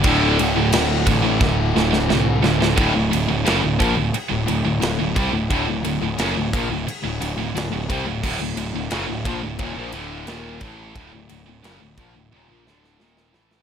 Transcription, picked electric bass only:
X:1
M:4/4
L:1/16
Q:1/4=88
K:none
V:1 name="Picked electric bass" clef=bass
D,,,2 D,,,2 D,,,2 A,,,2 D,,,2 D,,,2 C,,2 D,,,2 | D,,, D,,, D,,, D,,, ^F,,, D,,, _B,,, D,,, z D,,, D,,, D,,, D,,, D,,, C,, D,,, | D,,, D,,, D,,, D,,, ^F,,, D,,, _B,,, D,,, z D,,, D,,, D,,, D,,, D,,, C,, D,,, | D,,, D,,, D,,, D,,, ^F,,, D,,, _B,,, D,,, _E,,, B,,, D,,,2 E,,,2 A,,,2 |
D,,, D,,, D,,, D,,, ^F,,, D,,, _B,,, D,,, _E,,, B,,, D,,,2 E,,,2 A,,,2 |]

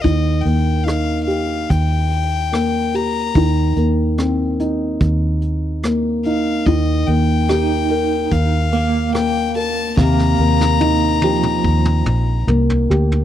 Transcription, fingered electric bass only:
X:1
M:4/4
L:1/8
Q:1/4=72
K:Eblyd
V:1 name="Fingered electric bass" clef=bass
E,, E,,3 E,,4 | E,, E,,3 E,,4 | E,, E,,3 E,,4 | E,, E,,3 E,, B,,, C,, D,, |]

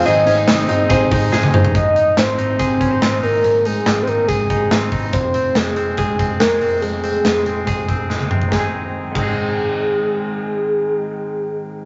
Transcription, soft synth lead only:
X:1
M:4/4
L:1/16
Q:1/4=142
K:Ab
V:1 name="Soft synth lead"
e12 z4 | e4 c4 c6 B2- | B2 A3- A/2 c/2 B2 A2 A4 z2 | c4 A4 A4 B4 |
A12- A2 z2 | A z4 z A8- A2- | A16 |]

